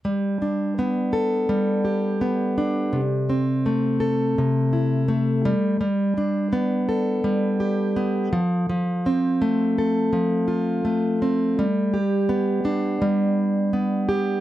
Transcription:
\new Staff \with { instrumentName = "Steel-string acoustic guitar" } { \time 4/4 \key g \mixolydian \tempo 4 = 83 g8 d'8 b8 a'8 g8 g'8 b8 d'8 | c8 c'8 a8 a'8 c8 e'8 a8 g8 | g8 d'8 b8 a'8 g8 g'8 b8 f8 | f8 c'8 a8 a'8 f8 f'8 a8 c'8 |
g8 g'8 b8 d'8 g4 b8 g'8 | }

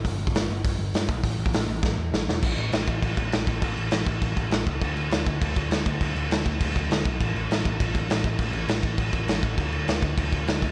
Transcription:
<<
  \new Staff \with { instrumentName = "Picked electric bass" } { \clef bass \time 4/4 \key a \dorian \tempo 4 = 201 g,,8 g,,8 g,,8 g,,8 g,,8 g,,8 g,8 b,,8 | a,,8 a,,8 a,,8 a,,8 a,,8 e,8 a,,8 e,,8 | \key a \mixolydian a,,8 a,,8 a,,8 a,,8 a,,8 a,,8 a,,8 a,,8 | a,,8 a,,8 a,,8 a,,8 a,,8 a,,8 a,,8 cis,8 |
d,8 d,8 d,8 d,8 d,8 d,8 d,8 d,8 | d,8 d,8 d,8 d,8 d,8 d,8 d,8 b,,8 | a,,8 a,,8 a,,8 a,,8 a,,8 a,,8 a,,8 a,,8 | a,,8 a,,8 a,,8 a,,8 a,,8 a,,8 a,,8 a,,8 |
d,8 d,8 d,8 d,8 d,8 d,8 d,8 d,8 | }
  \new DrumStaff \with { instrumentName = "Drums" } \drummode { \time 4/4 <hho bd>8. bd16 <hho sn>4 <hho bd>4 <hho sn>8 bd8 | <hho bd>8. bd16 <hho sn>4 <bd sn>4 sn8 sn8 | <cymc bd>8 cymc8 <cymc sn>8 <cymc bd>8 <cymc bd>8 <cymc bd>8 <cymc sn>8 <cymc bd>8 | <cymc bd>8 cymc8 <cymc sn>8 <cymc bd>8 <cymc bd>8 <cymc bd>8 <cymc sn>8 <cymc bd>8 |
<cymc bd>8 cymc8 <cymc sn>8 <cymc bd>8 <cymc bd>8 <cymc bd>8 <cymc sn>8 <cymc bd>8 | <cymc bd>8 cymc8 <cymc sn>8 <cymc bd>8 <cymc bd>8 <cymc bd>8 <cymc sn>8 <cymc bd>8 | <cymc bd>8 cymc8 <cymc sn>8 <cymc bd>8 <cymc bd>8 <cymc bd>8 <cymc sn>8 <cymc bd>8 | <cymc bd>8 cymc8 <cymc sn>8 <cymc bd>8 <cymc bd>8 <cymc bd>8 <cymc sn>8 <cymc bd>8 |
<cymc bd>8 cymc8 <cymc sn>8 <cymc bd>8 <cymc bd>8 <cymc bd>8 <cymc sn>8 <cymc bd>8 | }
>>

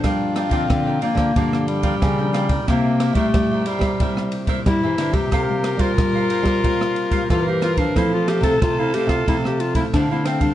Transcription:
<<
  \new Staff \with { instrumentName = "Cavaquinho" } { \time 4/4 \key c \mixolydian \tempo 4 = 91 <f' bes' d'' g''>8 <f' bes' d'' g''>16 <f' bes' d'' g''>16 r16 <bes' d'' g''>16 <f' bes' d'' g''>16 <bes' d'' g''>16 <f' bes' d'' g''>8. <f' bes' d'' g''>16 <f' bes' d'' g''>16 <bes' d'' g''>16 <f' bes' d'' g''>16 <bes' d'' g''>16 | <e' bes' c'' e''>8 <e' bes' c'' e''>16 <e' bes' c'' e''>16 r16 <bes' c'' e''>16 <e' bes' c'' e''>16 <bes' c'' e''>16 <e' bes' c'' e''>8. <e' bes' c'' e''>16 <e' bes' c'' e''>16 <bes' c'' e''>16 <e' bes' c'' e''>16 <bes' c'' e''>16 | <f' bes' c'' f''>8 <f' bes' c'' f''>16 <f' bes' c'' f''>16 r16 <bes' c'' f''>16 <f' bes' c'' f''>16 <bes' c'' f''>16 <f' bes' c'' f''>8. <f' bes' c'' f''>16 <f' bes' c'' f''>16 <bes' c'' f''>16 <f' bes' c'' f''>16 <bes' c'' f''>16 | <a' c'' f''>8 <e' a' c'' f''>16 <e' a' c'' f''>16 r16 <a' c'' f''>16 <e' a' c'' f''>16 <a' c'' f''>16 <a' c'' f''>8. <e' a' c'' f''>16 <e' a' c'' f''>16 <a' c'' f''>16 <e' a' c'' f''>16 <a' c'' f''>16 | }
  \new Staff \with { instrumentName = "Tenor saxophone" } { \time 4/4 \key c \mixolydian f'2 g'2 | g'2.~ g'8 r8 | bes'2. bes'4 | a'2.~ a'8 r8 | }
  \new Staff \with { instrumentName = "Clarinet" } { \time 4/4 \key c \mixolydian d'8. c'8. bes4 g4. | bes8. a8. g4 r8 e'8. g'16~ | g'8. f'2~ f'16 f'16 g'16 f'16 d'16 | e'16 f'16 g'16 a'16 f'16 e'16 g'16 f'16 e'16 g'16 f'16 e'16 d'16 e'16 c'16 d'16 | }
  \new Staff \with { instrumentName = "Nylon-string guitar" } { \time 4/4 \key c \mixolydian << { <f bes d'>8. <f bes d'>8. <f bes d'>8 <f bes d'>8. <f bes d'>8 <f bes d'>8 <g bes e'>16~ | <g bes e'>8. <g e'>8. <g bes e'>8 <g bes e'>8. <g bes e'>8 <g bes e'>8 <g bes f'>16~ | <g bes f'>16 <g bes f'>8. <g bes f'>4 <g bes f'>8. <g bes f'>8. <g bes f'>8 | <a c'>8. <a c' e'>8. <a c' e'>8 <a c'>8 r16 <a c' e'>8 <a c' e'>8 <g c' e'>16 | } \\ { g,4 d4 g,4 r4 | c4 g,4 c4 g,4 | c4 g,4 c4 g,4 | f4 c4 f4 c4 | } >> }
  \new Staff \with { instrumentName = "Nylon-string guitar" } { \clef bass \time 4/4 \key c \mixolydian g8. d16 d8 r16 d16 d4 des4 | c8. g16 g8 r16 g16 g4 g16 e16 d16 c16 | c8. g16 g8 r16 g16 g4 e4 | f8. c16 c8 r16 c16 c4 d4 | }
  \new DrumStaff \with { instrumentName = "Drums" } \drummode { \time 4/4 <bd cymr ss>8 <cymr ss>16 <bd cymr>16 <bd cymr ss>8 cymr16 <bd cymr ss>16 <bd cymr>16 ss16 cymr16 <bd cymr>16 <bd cymr ss>8 <cymr ss>16 <bd cymr>16 | <bd cymr ss>8 <cymr ss>16 <bd cymr>16 <bd cymr ss>8 cymr16 <bd cymr ss>16 <bd cymr>16 ss16 cymr16 <bd cymr>16 <bd cymr ss>8 <cymr ss>16 <bd cymr>16 | <bd cymr ss>8 <cymr ss>16 <bd cymr>16 <bd cymr ss>8 cymr16 <bd cymr ss>16 <bd cymr>16 ss16 cymr16 <bd cymr>16 <bd cymr ss>8 <cymr ss>16 <bd cymr>16 | <bd cymr ss>8 <cymr ss>16 <bd cymr>16 <bd cymr ss>8 cymr16 <bd cymr ss>16 <bd cymr>16 ss16 cymr16 <bd cymr>16 <bd cymr ss>8 <cymr ss>16 <bd cymr>16 | }
>>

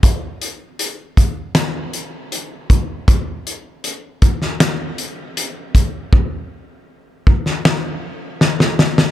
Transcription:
\new DrumStaff \with { instrumentName = "Drums" } \drummode { \time 4/4 \tempo 4 = 79 <hh bd>8 hh8 hh8 <hh bd>8 <hh sn>8 hh8 hh8 <hh bd>8 | <hh bd>8 hh8 hh8 <hh bd>16 sn16 <hh sn>8 hh8 hh8 <hh bd>8 | bd4 r8 bd16 sn16 sn4 sn16 sn16 sn16 sn16 | }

